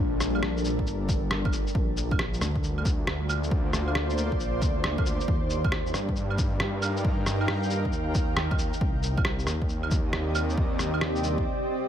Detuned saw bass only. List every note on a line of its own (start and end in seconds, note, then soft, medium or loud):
0.00 0.64 A#1 loud
0.65 0.86 A#1 medium
0.87 1.65 G1 medium
1.75 2.40 A#1 loud
2.41 4.17 D2 loud
4.17 4.38 D2 loud
4.40 4.63 A#1 medium
4.62 5.19 D2 medium
5.28 5.93 D#2 medium
5.94 7.70 G2 loud
7.70 7.91 G2 loud
7.93 8.71 D#2 medium
8.81 9.46 C2 loud
9.47 11.23 D#2 loud
11.23 11.44 D#2 loud